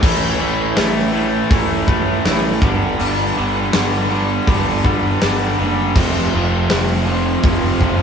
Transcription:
0.01 0.35 A1 loud
0.01 0.37 A2 loud
0.01 0.37 E3 medium
0.01 0.38 A3 loud
0.01 0.38 C#4 loud
0.01 0.39 E4 medium
0.01 kick loud
0.01 crash loud
0.38 0.73 A1 medium
0.38 0.74 A2 medium
0.38 0.75 E3 medium
0.38 0.75 A3 medium
0.38 0.76 C#4 loud
0.38 0.76 E4 loud
0.75 1.41 A1 loud
0.75 1.10 A2 medium
0.75 1.11 E3 medium
0.75 1.12 A3 loud
0.75 1.11 C#4 loud
0.75 1.12 E4 loud
0.75 snare loud
0.75 open hi-hat medium
1.12 1.48 A2 medium
1.12 1.49 E3 loud
1.12 1.50 A3 medium
1.12 1.50 C#4 medium
1.12 1.51 E4 medium
1.49 2.15 A1 loud
1.49 1.86 A2 medium
1.49 1.87 E3 loud
1.49 1.87 A3 loud
1.49 1.87 C#4 loud
1.49 1.87 E4 loud
1.49 kick loud
1.49 open hi-hat medium
1.87 2.23 A2 loud
1.87 2.23 E3 medium
1.87 2.24 A3 loud
1.87 2.24 C#4 medium
1.87 2.25 E4 medium
1.87 kick loud
2.24 2.58 A1 medium
2.24 2.60 A2 loud
2.24 2.60 E3 loud
2.24 2.60 A3 medium
2.24 2.61 C#4 loud
2.24 2.61 E4 loud
2.24 snare loud
2.24 open hi-hat medium
2.61 2.94 G1 loud
2.61 2.97 G2 loud
2.61 2.98 D3 loud
2.61 2.99 G3 loud
2.61 2.99 B3 loud
2.61 3.00 D4 loud
2.61 kick loud
2.98 3.31 G1 loud
2.98 3.35 G2 medium
2.98 3.35 D3 medium
2.98 3.36 G3 loud
2.98 3.36 B3 loud
2.98 3.37 D4 loud
2.98 open hi-hat medium
3.36 3.69 G1 medium
3.36 3.71 G2 medium
3.36 3.71 D3 medium
3.36 3.72 G3 medium
3.36 3.73 B3 loud
3.36 3.73 D4 medium
3.72 4.38 G1 medium
3.72 4.08 G2 medium
3.72 4.09 D3 loud
3.72 4.10 G3 loud
3.72 4.11 B3 loud
3.72 4.11 D4 loud
3.72 snare loud
3.72 open hi-hat medium
4.09 4.45 G2 loud
4.09 4.46 D3 medium
4.09 4.46 G3 medium
4.09 4.46 B3 loud
4.09 4.47 D4 loud
4.46 5.12 G1 loud
4.46 4.82 G2 loud
4.46 4.83 D3 loud
4.46 4.83 G3 loud
4.46 4.84 B3 loud
4.46 4.84 D4 loud
4.46 kick loud
4.46 open hi-hat medium
4.83 5.19 G2 loud
4.83 5.19 D3 loud
4.83 5.20 G3 loud
4.83 5.21 B3 loud
4.83 5.21 D4 loud
4.83 kick medium
5.20 5.54 G1 loud
5.20 5.57 G2 loud
5.20 5.58 D3 loud
5.20 5.58 G3 loud
5.20 5.59 B3 loud
5.20 5.59 D4 loud
5.20 snare loud
5.20 open hi-hat medium
5.59 5.91 F#1 loud
5.59 5.94 G2 loud
5.59 5.94 D3 loud
5.59 5.94 G3 loud
5.59 5.95 B3 medium
5.59 5.95 D4 loud
5.96 6.28 F1 loud
5.96 6.33 F2 medium
5.96 6.34 C3 medium
5.96 6.34 F3 loud
5.96 6.35 A3 loud
5.96 6.35 C4 loud
5.96 kick loud
5.96 crash loud
6.14 snare soft
6.34 6.66 F1 medium
6.34 6.70 F2 medium
6.34 6.70 C3 loud
6.34 6.71 F3 medium
6.34 6.71 A3 medium
6.34 6.72 C4 loud
6.70 7.35 F1 medium
6.70 7.06 F2 loud
6.70 7.06 C3 loud
6.70 7.07 F3 loud
6.70 7.07 A3 loud
6.70 7.07 C4 loud
6.70 snare loud
6.70 open hi-hat medium
7.07 7.42 F2 medium
7.07 7.43 C3 medium
7.07 7.44 F3 medium
7.07 7.45 A3 medium
7.07 7.44 C4 loud
7.43 8.02 F1 loud
7.43 7.81 F2 loud
7.43 7.81 C3 loud
7.43 7.82 F3 loud
7.43 7.82 A3 loud
7.43 7.82 C4 loud
7.43 kick loud
7.43 open hi-hat medium
7.81 8.02 F2 medium
7.81 8.02 C3 medium
7.81 8.02 F3 loud
7.81 8.02 A3 loud
7.81 8.02 C4 loud
7.81 kick medium

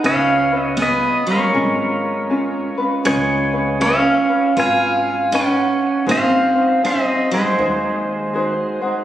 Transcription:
0.03 1.02 C#2 medium
0.03 0.57 C#4 medium
0.03 0.52 C#4 medium
0.03 0.51 F4 medium
0.03 0.52 G#4 medium
0.03 0.51 B4 medium
0.03 0.77 C#5 medium
0.03 0.63 F5 loud
0.52 0.79 C#4 soft
0.52 0.80 F4 soft
0.52 0.80 B4 soft
0.57 0.76 B3 medium
0.63 0.82 D#5 loud
0.77 1.23 B3 medium
0.77 1.28 C#4 medium
0.77 1.28 F4 medium
0.77 1.27 G#4 medium
0.81 1.28 B4 medium
0.81 1.26 B4 medium
0.81 1.30 D#5 medium
1.27 2.74 G#3 medium
1.27 1.54 C#4 soft
1.27 1.54 F4 soft
1.31 2.76 A#4 medium
1.31 2.76 C#5 medium
1.54 2.53 G#1 medium
1.54 2.29 C#4 medium
1.54 2.30 F4 medium
1.54 2.29 G#4 medium
2.30 2.78 C#4 medium
2.30 2.78 F4 medium
2.30 2.78 G#4 medium
2.77 3.04 C#4 soft
2.77 3.05 F4 soft
2.77 3.05 B4 medium
3.05 4.04 C#2 medium
3.05 3.77 G#3 medium
3.05 3.54 C#4 medium
3.05 3.53 F4 medium
3.05 3.53 G#4 medium
3.05 3.78 G#4 medium
3.05 3.52 B4 medium
3.05 3.78 C#5 medium
3.53 3.79 C#4 soft
3.53 3.80 F4 soft
3.53 3.80 B4 soft
3.80 4.29 C#4 medium
3.80 4.53 C#4 medium
3.80 4.29 F4 medium
3.80 4.29 G#4 medium
3.80 4.28 B4 medium
3.80 4.53 C#5 medium
3.80 4.58 F5 loud
4.29 4.56 C#4 soft
4.29 4.56 F4 soft
4.29 4.57 B4 soft
4.56 5.55 G#1 medium
4.56 5.31 C#4 medium
4.56 5.28 F4 medium
4.56 5.31 F4 medium
4.56 5.31 G#4 medium
4.56 5.32 B4 medium
4.56 5.30 F5 medium
4.56 5.36 G#5 medium
5.31 6.07 C#4 medium
5.31 6.04 C#4 medium
5.31 6.07 G#4 medium
5.31 6.07 B4 medium
5.31 6.05 C#5 medium
5.35 6.05 F#5 medium
6.06 7.05 G#1 medium
6.06 6.80 C4 medium
6.06 6.55 D#4 medium
6.06 6.55 F#4 medium
6.06 6.55 G#4 medium
6.06 6.54 C5 medium
6.11 6.81 C5 medium
6.11 6.86 F5 loud
6.55 6.82 D#4 soft
6.55 6.83 F#4 soft
6.55 6.83 C5 soft
6.83 7.02 C#4 medium
6.83 7.31 D#4 medium
6.83 7.31 F#4 medium
6.83 7.31 G#4 medium
6.83 7.30 C5 medium
6.83 7.29 C5 medium
6.83 7.04 E5 medium
7.02 7.28 C4 medium
7.02 7.34 D#5 medium
7.31 8.78 G#3 medium
7.31 7.57 D#4 soft
7.31 7.58 F#4 soft
7.31 8.80 G#4 medium
7.31 7.59 C5 soft
7.31 8.79 C5 medium
7.58 8.57 D#2 medium
7.58 8.33 D#4 medium
7.58 8.34 F#4 medium
7.58 8.33 G#4 medium
7.58 8.35 C5 medium
8.34 8.82 D#4 medium
8.34 8.81 F#4 medium
8.34 8.82 G#4 medium
8.34 8.80 C5 medium
8.81 9.04 D#4 soft
8.81 9.04 F#4 medium
8.81 9.04 C5 medium

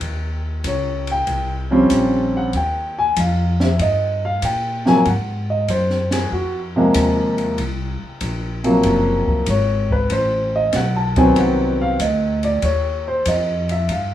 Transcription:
0.01 0.63 D#2 medium
0.01 kick soft
0.01 ride medium
0.64 1.25 C#2 medium
0.64 1.08 C#5 medium
0.64 kick soft
0.64 hi-hat pedal medium
0.64 ride medium
1.07 ride soft
1.12 1.88 G5 medium
1.27 1.88 C2 medium
1.27 kick soft
1.27 ride medium
1.71 2.50 F3 medium
1.71 2.50 G3 medium
1.71 2.50 C4 medium
1.71 2.50 C#4 medium
1.90 2.52 A#1 medium
1.90 kick soft
1.90 hi-hat pedal medium
1.90 ride medium
2.37 2.55 F#5 medium
2.53 3.15 D#2 medium
2.53 2.97 G5 medium
2.53 kick soft
2.53 ride soft
2.99 3.17 G#5 medium
3.16 3.78 F2 medium
3.16 3.61 F5 medium
3.16 kick soft
3.16 hi-hat pedal medium
3.16 ride medium
3.60 3.80 E5 medium
3.60 snare medium
3.79 4.41 G2 medium
3.79 4.23 D#5 medium
3.79 kick soft
3.79 ride medium
4.25 4.43 F5 medium
4.42 5.04 A#2 medium
4.42 4.86 G5 medium
4.42 kick soft
4.42 hi-hat pedal medium
4.42 ride medium
4.85 5.04 C3 medium
4.85 5.04 F3 medium
4.85 5.04 F#3 medium
4.85 5.04 A#3 medium
4.85 5.06 G#5 medium
4.85 snare soft
5.05 5.67 G#2 medium
5.05 5.49 F#5 medium
5.05 kick soft
5.05 ride soft
5.50 5.69 D#5 medium
5.68 6.30 F#2 medium
5.68 6.12 C5 medium
5.68 kick soft
5.68 hi-hat pedal medium
5.68 ride medium
5.90 snare soft
6.11 6.32 G#4 medium
6.11 snare soft
6.11 ride medium
6.32 6.93 F2 medium
6.32 6.59 F#4 medium
6.32 kick soft
6.76 7.55 C3 medium
6.76 7.55 F3 medium
6.76 7.55 G#3 medium
6.76 7.55 A#3 medium
6.94 7.56 D#2 medium
6.94 kick soft
6.94 hi-hat pedal medium
6.94 ride medium
7.38 ride soft
7.58 7.98 C2 medium
7.58 kick soft
7.58 ride medium
8.02 muted upright bass stroke soft
8.21 8.82 A#1 medium
8.21 kick soft
8.21 hi-hat pedal soft
8.21 ride medium
8.64 9.43 C3 medium
8.64 9.43 F3 medium
8.64 9.44 F#3 medium
8.64 9.44 A#3 medium
8.64 ride soft
8.83 9.25 F#1 medium
8.83 kick soft
8.83 ride medium
9.27 muted upright bass stroke soft
9.27 kick soft
9.46 10.09 G#1 medium
9.46 9.91 C#5 medium
9.46 kick soft
9.46 hi-hat pedal soft
9.46 ride medium
9.91 10.11 B4 medium
9.91 kick medium
10.10 10.72 A1 medium
10.10 10.54 C5 medium
10.10 kick soft
10.10 ride medium
10.56 10.74 D#5 medium
10.73 11.35 B1 medium
10.73 10.95 F#5 medium
10.73 kick soft
10.73 snare soft
10.73 hi-hat pedal medium
10.73 ride medium
10.96 11.16 A5 medium
11.16 11.96 D#3 medium
11.16 11.96 F#3 medium
11.16 11.96 B3 medium
11.16 11.96 C4 medium
11.16 11.38 G#5 medium
11.16 kick medium
11.16 ride soft
11.36 11.98 C2 medium
11.36 11.81 F#5 medium
11.36 ride medium
11.81 12.00 F5 medium
12.00 12.61 D2 medium
12.00 12.43 D#5 medium
12.00 kick soft
12.00 hi-hat pedal medium
12.00 ride medium
12.43 12.63 D5 medium
12.43 ride soft
12.62 13.24 D#2 medium
12.62 13.06 C#5 medium
12.62 kick soft
12.62 ride medium
13.08 13.26 C5 medium
13.26 13.87 F2 medium
13.26 13.70 D#5 medium
13.26 kick soft
13.26 hi-hat pedal medium
13.26 ride medium
13.69 13.90 E5 medium
13.69 ride soft
13.89 14.14 G2 medium
13.89 14.14 F5 medium
13.89 kick soft
13.89 ride medium

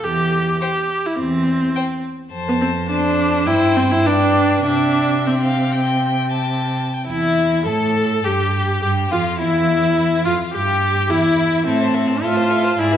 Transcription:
0.03 0.53 E2 soft
0.03 0.61 G4 medium
0.61 1.08 G4 soft
0.61 0.69 C5 soft
0.61 0.70 G5 soft
1.06 1.19 E4 medium
1.20 1.67 E2 soft
1.20 2.03 C4 medium
1.76 1.85 C5 soft
1.76 1.84 G5 soft
2.33 3.48 F2 soft
2.33 2.86 C5 soft
2.33 2.86 A5 soft
2.48 2.54 B3 medium
2.61 2.69 C4 soft
2.89 3.49 D4 medium
2.89 3.46 C5 soft
2.89 3.48 A5 soft
3.46 4.65 G2 soft
3.46 3.78 E4 medium
3.46 4.07 C5 soft
3.46 4.04 G5 soft
3.77 3.93 C4 medium
3.92 4.08 E4 medium
4.05 4.65 D4 medium
4.05 4.65 B4 soft
4.05 4.64 G5 soft
4.66 6.84 C3 soft
4.66 5.29 D4 medium
4.66 5.26 E5 soft
4.66 5.25 G5 soft
5.25 6.78 C4 soft
5.25 5.33 E5 soft
5.25 6.84 G5 soft
5.42 5.74 F5 soft
5.72 6.32 G5 soft
6.33 6.96 A5 soft
6.94 7.07 G5 soft
7.07 7.69 E2 soft
7.07 7.68 E4 soft
7.07 7.63 E4 medium
7.07 7.64 E4 soft
7.66 8.24 A2 medium
7.66 8.25 A4 medium
7.66 8.26 A4 medium
7.66 8.26 A4 soft
8.24 8.82 G2 soft
8.24 8.82 G4 soft
8.24 8.81 G4 soft
8.24 8.82 G4 soft
8.82 9.11 G2 medium
8.82 9.12 G4 soft
8.82 8.90 G4 soft
8.82 8.91 G4 medium
9.11 9.42 F2 soft
9.11 9.39 F4 medium
9.11 9.39 F4 soft
9.11 9.20 F4 soft
9.40 10.25 E2 soft
9.40 10.27 E4 soft
9.40 10.24 E4 medium
9.40 10.24 E4 soft
10.25 10.34 F2 soft
10.25 10.33 F4 medium
10.25 10.54 F4 soft
10.25 10.34 F4 soft
10.54 11.11 G2 soft
10.54 11.12 G4 medium
10.54 11.09 G4 medium
11.10 11.66 E2 soft
11.10 11.66 E4 soft
11.10 11.67 E4 medium
11.66 12.16 A2 soft
11.66 12.25 C4 medium
11.66 11.83 A4 soft
11.66 11.82 E5 soft
11.80 11.96 C5 soft
11.80 11.96 A5 soft
11.95 12.10 A4 soft
11.95 12.09 E5 soft
12.07 12.22 C5 soft
12.07 12.21 A5 soft
12.21 12.72 A2 soft
12.21 12.81 F4 medium
12.21 12.38 A4 soft
12.21 12.37 E5 soft
12.36 12.51 C5 soft
12.36 12.52 A5 soft
12.50 12.66 A4 soft
12.50 12.66 E5 soft
12.64 12.78 C5 soft
12.64 12.78 A5 soft
12.78 12.97 G#2 soft
12.78 12.97 E4 soft
12.78 12.94 G#4 soft
12.78 12.93 D5 soft
12.91 12.97 B4 soft
12.91 12.97 E5 soft

